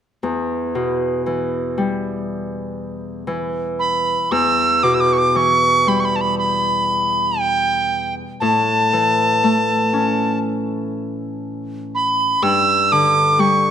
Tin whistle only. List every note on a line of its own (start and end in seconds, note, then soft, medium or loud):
3.79 4.33 B5 medium
4.32 4.85 E6 medium
4.83 4.96 D6 medium
4.94 5.02 E6 soft
5.00 5.14 D6 medium
5.13 5.20 C#6 soft
5.18 5.29 D6 medium
5.29 5.38 D6 medium
5.36 5.90 C#6 medium
5.88 6.01 B5 medium
6.00 6.06 C#6 soft
6.05 6.17 B5 medium
6.16 6.22 A5 soft
6.21 6.38 B5 medium
6.38 7.41 B5 medium
7.40 8.15 G5 medium
8.40 10.39 A5 medium
11.95 12.44 B5 medium
12.43 12.93 E6 medium
12.92 13.41 D6 medium
13.40 13.71 C#6 medium